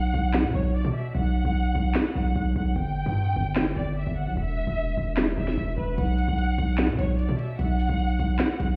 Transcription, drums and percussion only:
0.34 snare loud
0.34 clap medium
1.95 snare loud
1.95 clap medium
3.56 snare loud
3.56 clap medium
5.17 snare loud
5.17 clap medium
5.48 snare medium
5.98 closed hi-hat medium
6.18 closed hi-hat medium
6.38 closed hi-hat medium
6.59 closed hi-hat medium
6.78 snare loud
6.78 clap medium
6.78 closed hi-hat medium
6.99 closed hi-hat medium
7.19 closed hi-hat medium
7.39 closed hi-hat medium
7.59 closed hi-hat medium
7.79 open hi-hat medium
7.99 closed hi-hat medium
8.09 closed hi-hat medium
8.20 closed hi-hat medium
8.39 snare loud
8.39 clap medium
8.39 closed hi-hat medium
8.60 closed hi-hat medium

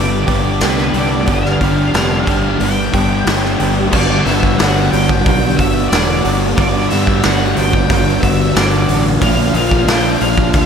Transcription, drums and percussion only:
0.28 kick medium
0.28 open hi-hat medium
0.61 snare loud
0.61 open hi-hat medium
0.78 snare soft
0.94 open hi-hat medium
1.28 kick loud
1.28 open hi-hat medium
1.45 snare soft
1.61 kick medium
1.61 open hi-hat medium
1.94 snare loud
1.94 open hi-hat medium
2.27 kick medium
2.27 open hi-hat medium
2.61 open hi-hat medium
2.94 kick medium
2.94 open hi-hat medium
3.27 snare loud
3.27 open hi-hat medium
3.45 snare soft
3.60 open hi-hat medium
3.93 kick loud
3.93 crash loud
4.27 snare soft
4.27 open hi-hat medium
4.43 kick medium
4.59 snare loud
4.59 open hi-hat medium
4.93 open hi-hat medium
5.09 kick medium
5.26 kick loud
5.26 open hi-hat medium
5.59 kick medium
5.59 open hi-hat medium
5.92 snare loud
5.92 open hi-hat medium
6.25 open hi-hat medium
6.58 kick loud
6.58 open hi-hat medium
6.90 snare soft
6.90 open hi-hat medium
7.07 kick medium
7.23 snare loud
7.23 open hi-hat medium
7.57 open hi-hat medium
7.73 kick medium
7.90 kick loud
7.90 open hi-hat medium
8.23 kick medium
8.23 open hi-hat medium
8.56 snare loud
8.56 open hi-hat loud
8.89 open hi-hat medium
9.22 kick loud
9.22 open hi-hat medium
9.55 open hi-hat medium
9.71 kick medium
9.88 snare loud
9.88 open hi-hat medium
10.21 open hi-hat medium
10.38 kick medium
10.53 kick loud
10.53 open hi-hat medium

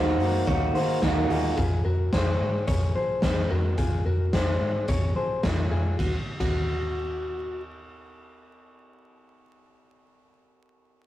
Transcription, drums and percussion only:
0.20 open hi-hat medium
0.47 kick loud
0.47 closed hi-hat medium
0.75 open hi-hat medium
1.02 kick medium
1.02 snare medium
1.02 closed hi-hat medium
1.30 open hi-hat medium
1.58 kick medium
1.58 closed hi-hat medium
2.13 kick medium
2.13 snare medium
2.13 closed hi-hat medium
2.67 kick loud
2.67 closed hi-hat medium
3.22 kick loud
3.22 snare medium
3.22 closed hi-hat medium
3.78 kick medium
3.78 closed hi-hat medium
4.33 kick medium
4.33 snare medium
4.33 closed hi-hat medium
4.88 kick loud
4.88 closed hi-hat medium
5.43 kick loud
5.43 snare loud
5.43 closed hi-hat medium
5.99 kick medium
5.99 ride medium
6.40 kick medium
6.40 ride medium

